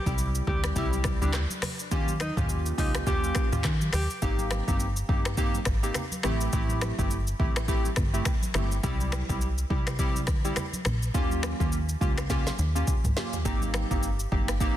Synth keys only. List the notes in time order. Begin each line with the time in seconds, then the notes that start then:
0.06 G3 C4 E4 G4
0.47 G3 C4 E4 G4
0.76 G3 C4 E4 G4
1.21 G3 C4 E4 G4
1.91 A#3 C#4 F4 G4
2.37 A#3 C#4 F4 G4
2.78 A#3 C#4 F4 G4
3.06 A#3 C#4 F4 G4
3.52 A#3 C#4 F4 G4
4.22 A#3 C4 D#4 G4
4.67 A#3 C4 D#4 G4
5.09 A#3 C4 D#4 G4
5.37 A#3 C4 D#4 G4
5.83 A#3 C4 D#4 G4
6.24 A3 C4 E4 G4
6.53 A3 C4 E4 G4
6.98 A3 C4 E4 G4
7.39 A3 C4 E4 G4
7.68 A3 C4 E4 G4
8.13 A3 C4 E4 G4
8.54 A3 C4 E4 G4
8.83 G3 C4 E4 G4
9.29 G3 C4 E4 G4
9.70 G3 C4 E4 G4
9.99 G3 C4 E4 G4
10.44 G3 C4 E4 G4
11.14 A#3 C#4 F4 G4
11.60 A#3 C#4 F4 G4
12.01 A#3 C#4 F4 G4
12.30 A#3 C#4 F4 G4
12.75 A#3 C#4 F4 G4
13.16 A#3 C#4 F4 G4
13.45 A#3 C4 D#4 G4
13.91 A#3 C4 D#4 G4
14.32 A#3 C4 D#4 G4
14.60 A#3 C4 D#4 G4